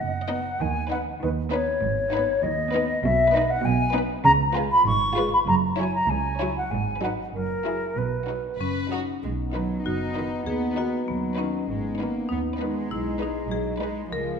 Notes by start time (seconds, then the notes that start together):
Already playing: F#2
0.00 F#1 F#5
0.28 B3 D#4 D#5
0.60 D#2 D#3 G#5
0.90 B3 D#4 B4 F#5
1.21 D#2 D#3 B4
1.51 B3 D#4 B4 C#5
1.83 G#1 G#2
2.13 B3 D#4 B4
2.43 D#2 D#5
2.74 B3 D#4 B4
3.04 B1 B2 E5
3.34 B3 D#4 B4 D#5
3.50 F#5
3.65 B1 B2 G#5
3.94 B3 D#4 B4
4.25 C#2 C#3 A#5
4.55 G#3 F4 B4 G#5
4.72 B5
4.86 G#1 G#2 C#6
5.16 G#3 F4 B4
5.33 B5
5.48 F#1 F#2 A#5
5.79 F#3 E4 C#5 G#5
5.95 A#5
6.09 C#2 G#5
6.41 F#3 E4 C#5
6.58 F#5
6.71 G#1 G#2 G#5
7.02 F#3 D#4 B4 F#5
7.34 F#1 F#2 A#4
7.64 F#3 E4 G#4
7.97 B1 B2 B4
8.27 F#3 D#4 F#4
8.60 F#1 F#2 C#4 B4
8.91 F#3 D#4 F#4
9.23 B1 G#3 B3 D#4
9.53 D#3 F#3 D#4 B4
9.84 F#1 D#4 F#4
10.15 D#3 D#4 B4
10.46 D#2 B3 G#4
10.76 D#3 D#4 F#4 B4
11.08 D#2 F#3 B3
11.38 D#3 C#4 D#4 B4
11.69 G#1 G#3 B3 D#4
12.00 D#3 A#3 D#4 B4
12.29 D#2 B3 D#4
12.60 D#3 G#3 D#4 B4
12.91 B1 G#3 E4
13.21 G#3 D#4 B4
13.51 B1 F#3 G#4
13.82 G#3 D#4 B4
14.12 C#2 F3 G#3 F4 A#4